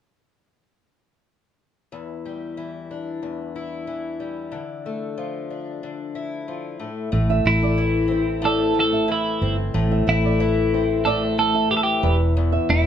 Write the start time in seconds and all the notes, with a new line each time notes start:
1.92 E2
2.25 G3
2.57 E3
2.91 D4
3.23 E2
3.56 E4
3.87 E3
4.20 G3
4.52 D3
4.86 A3
5.18 F3
5.50 D4
5.83 D3
6.15 E4
6.48 F3
6.79 A2
7.12 A1 A2
7.30 E5
7.45 A1 A3 E4
7.63 D5
7.78 E3
8.08 C4 C5
8.42 A2 A4 D5
8.74 A3
8.80 A4
8.93 E5
9.08 E3 E4
9.42 G1 C4
9.74 A1 A2
9.91 E5
10.07 A1 A3 E4
10.25 D5
10.40 E3
10.74 C4 C5
11.05 A2 A4 D5
11.38 A3 A4
11.55 E5
11.71 E3 G4
11.77 A4
11.83 G4
12.03 E1 E2 B4
12.37 E2
12.52 E5
12.69 E1 G3 E4